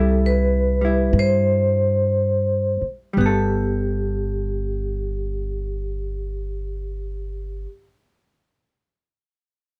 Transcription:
Already playing: upright bass C2, hollow-body jazz guitar G3 E4, vibraphone A4
0.26 vibraphone B4
0.81 hollow-body jazz guitar G3 E4
1.13 upright bass G2
1.19 vibraphone C5
2.82 muted upright bass stroke
3.13 upright bass G1, hollow-body jazz guitar G3
3.18 hollow-body jazz guitar B3, vibraphone G4
3.26 hollow-body jazz guitar A4

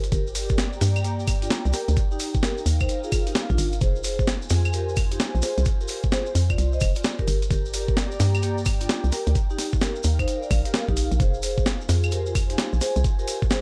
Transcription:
Already playing: fm bass G1, analog synth pad F4 G4 C5
0.04 analog synth pad D5 G5, closed hi-hat, maracas
0.12 fm bass G1, vibraphone G4 A#4, kick, closed hi-hat, maracas
0.27 maracas
0.35 vibraphone G4 A#4, open hi-hat, maracas
0.49 analog synth pad A#5, kick, maracas
0.58 snare, closed hi-hat, maracas
0.73 maracas
0.81 fm bass G2, vibraphone A#3 G4, snare, open hi-hat, maracas
0.96 claves, maracas
1.04 vibraphone A#3 G4, closed hi-hat, maracas
1.20 maracas
1.27 kick, open hi-hat, claves, maracas
1.42 vibraphone D4 F4, closed hi-hat, maracas
1.50 snare, closed hi-hat, maracas
1.65 fm bass C2, maracas
1.73 vibraphone G4 A#4, snare, open hi-hat, maracas
1.88 fm bass D2, closed hi-hat, maracas
1.97 analog synth pad D#4, kick, closed hi-hat, maracas
2.04 analog synth pad A#4
2.11 vibraphone D#4 G4, maracas
2.20 open hi-hat, maracas
2.34 kick, maracas
2.41 vibraphone G4 A#4, analog synth pad F5, snare, closed hi-hat, maracas
2.58 maracas
2.66 fm bass D#2, open hi-hat, maracas
2.80 vibraphone D#4 C5, kick, claves, maracas
2.89 closed hi-hat, maracas
3.04 vibraphone F4 G#4, maracas
3.12 kick, open hi-hat, claves, maracas
3.27 vibraphone D#4 G4, closed hi-hat, maracas
3.35 snare, closed hi-hat, maracas
3.50 fm bass A#1, vibraphone D4 F4, kick, maracas
3.58 fm bass G1, open hi-hat, maracas
3.73 closed hi-hat, maracas
3.81 fm bass F1, analog synth pad F4, vibraphone G#4 C5, kick, closed hi-hat, maracas
3.96 maracas
4.04 vibraphone G#4 C5, analog synth pad G#5, open hi-hat, maracas
4.13 analog synth pad C5
4.19 kick, maracas
4.27 snare, closed hi-hat, maracas
4.42 maracas
4.50 fm bass F2, vibraphone F4 G#4, snare, open hi-hat, maracas
4.65 claves, maracas
4.73 vibraphone G4 A#4, closed hi-hat, maracas
4.89 maracas
4.96 kick, open hi-hat, claves, maracas
5.11 vibraphone D#4 G4, closed hi-hat, maracas
5.20 snare, closed hi-hat, maracas
5.35 fm bass A#1, maracas
5.42 vibraphone G#4 C5, snare, open hi-hat, maracas
5.58 fm bass C2, closed hi-hat, maracas
5.65 kick, closed hi-hat, maracas
5.81 vibraphone G4 A#4, maracas
5.88 open hi-hat, maracas
6.03 kick, maracas
6.12 vibraphone G#4 C5, snare, closed hi-hat, maracas
6.26 maracas
6.35 fm bass F2, open hi-hat, maracas
6.50 vibraphone F4 D5, kick, claves, maracas
6.58 fm bass C2, closed hi-hat, maracas
6.73 vibraphone C5 D#5, maracas
6.80 fm bass F1, kick, open hi-hat, claves, maracas
6.95 vibraphone F4 D5, closed hi-hat, maracas
7.04 snare, closed hi-hat, maracas
7.19 vibraphone G4 A#4, kick, maracas
7.27 fm bass G1, analog synth pad G4, open hi-hat, maracas
7.42 analog synth pad A#5, closed hi-hat, maracas
7.47 vibraphone G4 A#4, analog synth pad D5, kick, closed hi-hat
7.51 fm bass G1, maracas
7.66 maracas
7.70 analog synth pad G5
7.74 vibraphone G4 A#4, open hi-hat, maracas
7.88 kick, maracas
7.97 snare, closed hi-hat, maracas
8.12 maracas
8.20 fm bass G2, vibraphone A#3 G4, snare, open hi-hat, maracas
8.34 claves, maracas
8.43 vibraphone A#3 G4, closed hi-hat, maracas
8.58 maracas
8.65 kick, open hi-hat, claves, maracas
8.80 vibraphone D4 F4, closed hi-hat, maracas
8.89 snare, closed hi-hat, maracas
9.04 fm bass C2, maracas
9.12 vibraphone G4 A#4, snare, open hi-hat, maracas
9.26 fm bass D2, closed hi-hat, maracas
9.35 analog synth pad D#4, kick, closed hi-hat, maracas
9.50 vibraphone D#4 G4, maracas
9.54 analog synth pad A#4 F5
9.59 snare, open hi-hat, maracas
9.73 kick, maracas
9.81 vibraphone G4 A#4, snare, closed hi-hat, maracas
9.96 maracas
10.03 fm bass D#2, open hi-hat, maracas
10.19 vibraphone D#4 C5, kick, closed hi-hat, claves, maracas
10.28 closed hi-hat, maracas
10.42 vibraphone A#4 D5, maracas
10.51 fm bass A#1, kick, open hi-hat, claves, maracas
10.65 vibraphone G4 A#4, closed hi-hat, maracas
10.74 snare, closed hi-hat, maracas
10.88 fm bass A#1, vibraphone D#4 G4, kick, maracas
10.97 open hi-hat, maracas
11.12 fm bass A#1, closed hi-hat, maracas
11.20 fm bass F1, analog synth pad F4, vibraphone G#4 C5, kick, closed hi-hat, maracas
11.34 maracas
11.40 vibraphone G#4 C5, analog synth pad C5, open hi-hat, maracas
11.48 analog synth pad G#5
11.58 kick, maracas
11.66 snare, closed hi-hat, maracas
11.81 maracas
11.89 fm bass F2, vibraphone F4 G#4, snare, open hi-hat, maracas
12.03 claves, maracas
12.11 vibraphone G4 A#4, closed hi-hat, maracas
12.26 maracas
12.35 kick, open hi-hat, claves, maracas
12.50 vibraphone D#4 G4, closed hi-hat, maracas
12.58 snare, closed hi-hat, maracas
12.73 fm bass A#1, maracas
12.81 vibraphone G#4 C5, snare, open hi-hat, maracas
12.96 fm bass C2, closed hi-hat, maracas
13.04 kick, closed hi-hat, maracas
13.19 vibraphone G4 A#4, maracas
13.28 open hi-hat, maracas
13.42 kick, maracas
13.50 vibraphone G#4 C5, snare, closed hi-hat, maracas

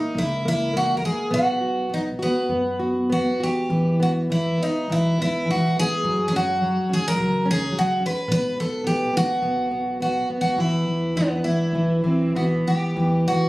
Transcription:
Already playing: nylon-string guitar A#3, twelve-string acoustic guitar D#4
0.15 upright bass C#2, nylon-string guitar A#3, twelve-string acoustic guitar E4
0.45 nylon-string guitar A#3, twelve-string acoustic guitar E4
0.73 nylon-string guitar A#3, twelve-string acoustic guitar F#4
0.97 twelve-string acoustic guitar A#4
1.02 nylon-string guitar A#3, twelve-string acoustic guitar G#4
1.31 upright bass B1, nylon-string guitar B3, twelve-string acoustic guitar F#4
1.61 nylon-string guitar F#4
1.89 nylon-string guitar B3
1.94 twelve-string acoustic guitar D#4
2.19 twelve-string acoustic guitar B3, nylon-string guitar F#4
2.49 upright bass F#2, nylon-string guitar B3
2.79 nylon-string guitar F#4
3.10 nylon-string guitar B3, twelve-string acoustic guitar F#4
3.40 nylon-string guitar F#4, twelve-string acoustic guitar G4
3.70 upright bass E2, nylon-string guitar E3
4.00 nylon-string guitar B3, twelve-string acoustic guitar F#4
4.30 nylon-string guitar E3, twelve-string acoustic guitar E4
4.58 nylon-string guitar B3
4.63 twelve-string acoustic guitar D#4
4.88 upright bass B1, nylon-string guitar E3
4.92 twelve-string acoustic guitar E4
5.18 nylon-string guitar B3, twelve-string acoustic guitar E4
5.45 nylon-string guitar E3
5.50 twelve-string acoustic guitar F#4
5.77 nylon-string guitar B3, twelve-string acoustic guitar G#4
6.03 upright bass F#2, nylon-string guitar F#3
6.28 twelve-string acoustic guitar G#4
6.33 nylon-string guitar C#4, twelve-string acoustic guitar F#4
6.62 nylon-string guitar F#3
6.89 nylon-string guitar C#4
6.93 twelve-string acoustic guitar G#4
7.08 twelve-string acoustic guitar A#4
7.16 upright bass C#2, nylon-string guitar F#3
7.46 nylon-string guitar C#4
7.51 twelve-string acoustic guitar G#4
7.72 nylon-string guitar F#3
7.79 twelve-string acoustic guitar F#4
8.00 nylon-string guitar C#4
8.06 twelve-string acoustic guitar B4
8.28 upright bass B1, nylon-string guitar B3, twelve-string acoustic guitar B4
8.57 nylon-string guitar B3, twelve-string acoustic guitar A4
8.84 nylon-string guitar B3, twelve-string acoustic guitar G4
9.13 nylon-string guitar B3, twelve-string acoustic guitar F#4
9.42 upright bass B1, nylon-string guitar B3
9.71 nylon-string guitar B3
10.00 nylon-string guitar B3, twelve-string acoustic guitar F#4
10.30 nylon-string guitar B3
10.41 twelve-string acoustic guitar F#4
10.56 upright bass E2, nylon-string guitar E3, twelve-string acoustic guitar E4
10.87 nylon-string guitar E3
11.16 nylon-string guitar E3, twelve-string acoustic guitar B3
11.44 nylon-string guitar E3, twelve-string acoustic guitar E4
11.73 upright bass B1, nylon-string guitar E3
12.04 nylon-string guitar E3, cello C4
12.36 nylon-string guitar E3, cello B3, twelve-string acoustic guitar F#4
12.68 nylon-string guitar E3, twelve-string acoustic guitar G4
12.96 upright bass E2, nylon-string guitar E3
13.28 nylon-string guitar B3, twelve-string acoustic guitar F#4

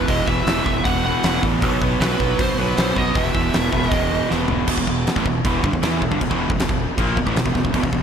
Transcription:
Already playing: overdriven electric guitar B3, lead electric guitar B4
0.08 fingered electric bass E1, overdriven electric guitar E2 B2 E3, lead electric guitar D#5, kick, open hi-hat
0.27 fingered electric bass E1, overdriven electric guitar E2 B2 E3, lead electric guitar E5, kick
0.47 fingered electric bass E1, overdriven electric guitar E2 B2 E3, snare, open hi-hat
0.66 fingered electric bass E1, overdriven electric guitar E2 B2 E3, kick
0.85 fingered electric bass E1, overdriven electric guitar E2 B2 E3, lead electric guitar F#5, kick, open hi-hat
1.04 overdriven electric guitar E2 B2 E3, lead electric guitar F#5
1.23 fingered electric bass E1, overdriven electric guitar E2 B2 E3, snare, open hi-hat
1.43 fingered electric bass A1, overdriven electric guitar E2 B2 E3, kick
1.62 fingered electric bass B1, overdriven electric guitar B2 F#3 B3, kick, open hi-hat
1.82 fingered electric bass B1, overdriven electric guitar B2 F#3 B3, kick
2.01 fingered electric bass B1, overdriven electric guitar B2 F#3 B3, lead electric guitar B4, snare, open hi-hat
2.20 fingered electric bass B1, overdriven electric guitar B2 F#3 B3, kick
2.39 fingered electric bass B1, overdriven electric guitar B2 F#3 B3, lead electric guitar C5, kick, open hi-hat
2.58 fingered electric bass B1, overdriven electric guitar B2 F#3 B3, lead electric guitar B4
2.77 fingered electric bass B1, overdriven electric guitar B2 F#3 B3, lead electric guitar C5, snare, open hi-hat
2.96 fingered electric bass B1, overdriven electric guitar B2 F#3 B3, lead electric guitar D#5, kick
3.15 fingered electric bass E1, overdriven electric guitar E2 B2 E3, lead electric guitar E5, kick, open hi-hat
3.35 fingered electric bass E1, overdriven electric guitar E2 B2 E3, kick
3.53 fingered electric bass E1, overdriven electric guitar E2 B2 E3, snare, open hi-hat
3.73 fingered electric bass E1, overdriven electric guitar E2 B2 E3, kick
3.83 snare
3.89 fingered electric bass E1, overdriven electric guitar E2 B2 E3, lead electric guitar D#5, kick, open hi-hat
4.11 overdriven electric guitar E2 B2 E3
4.30 fingered electric bass E1, overdriven electric guitar E2 B2 E3, snare
4.48 fingered electric bass E1, overdriven electric guitar E2 B2 E3, floor tom
4.67 fingered electric bass E1, overdriven electric guitar E2 B2, kick, crash
4.78 fingered electric bass E1, overdriven electric guitar E2 B2, kick
4.87 fingered electric bass E1, overdriven electric guitar E2 B2, kick
5.07 snare, crash
5.16 fingered electric bass A1, overdriven electric guitar A2 E3, kick, snare
5.26 fingered electric bass E1, overdriven electric guitar E2 B2, kick
5.45 fingered electric bass E1, overdriven electric guitar E2 B2 E3, kick, crash
5.64 fingered electric bass G1, overdriven electric guitar G2 D3, kick
5.73 fingered electric bass E1, overdriven electric guitar E2 B2, kick
5.82 fingered electric bass E2, overdriven electric guitar E3 B3 E4, snare, crash
6.02 fingered electric bass E1, overdriven electric guitar E2 B2, kick
6.11 fingered electric bass G1, overdriven electric guitar G2 D3, kick
6.21 fingered electric bass E1, overdriven electric guitar E2 B2, kick, crash
6.30 fingered electric bass E1, overdriven electric guitar E2 B2 E3, kick
6.49 fingered electric bass E1, overdriven electric guitar E2 B2, kick
6.59 fingered electric bass E1, overdriven electric guitar E2 B2, snare, crash
6.69 fingered electric bass E1, overdriven electric guitar E2 B2, kick, snare
6.98 fingered electric bass A#1, overdriven electric guitar A#2 F3 A#3, kick, crash
7.16 fingered electric bass E1, overdriven electric guitar E2 B2, kick
7.26 fingered electric bass A1, overdriven electric guitar A2 E3, kick
7.35 fingered electric bass E1, overdriven electric guitar E2 B2, snare, crash
7.45 fingered electric bass E1, overdriven electric guitar E2 B2, kick
7.55 fingered electric bass E1, overdriven electric guitar E2 B2, kick, snare
7.64 fingered electric bass E1, overdriven electric guitar E2 B2, kick
7.74 fingered electric bass E1, overdriven electric guitar E2 B2, kick, crash
7.83 fingered electric bass E1, overdriven electric guitar E2 B2, kick
7.92 fingered electric bass E1, overdriven electric guitar E2 B2, kick

